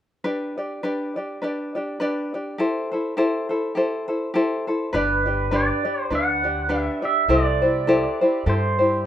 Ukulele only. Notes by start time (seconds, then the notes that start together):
0.24 D4 G4 B4 D5
0.58 D4 G4 D5
0.83 D4 G4 B4 D5
1.16 D4 G4 D5
1.42 D4 G4 B4 D5
1.75 D4 G4 D5
2.00 D4 G4 B4 D5
2.34 D4 G4 D5
2.58 E4 G4 A4 C5
2.92 E4 A4 C5
3.17 E4 G4 A4 C5
3.49 E4 A4 C5
3.75 E4 G4 A4 C5
4.08 E4 A4 C5
4.34 E4 G4 A4 C5
4.67 E4 A4 C5
4.93 D4 G4 B4 D5
5.26 D4 G4 D5
5.51 D4 G4 B4 D5
5.85 D4 G4 D5
6.10 D4 G4 B4 D5
6.44 D4 G4 D5
6.69 D4 G4 B4 D5
7.02 D4 G4 D5
7.29 E4 G4 A4 C5
7.62 E4 G4 C5
7.87 E4 G4 A4 C5
8.21 E4 G4 C5
8.46 E4 G4 A4 C5
8.79 E4 G4 C5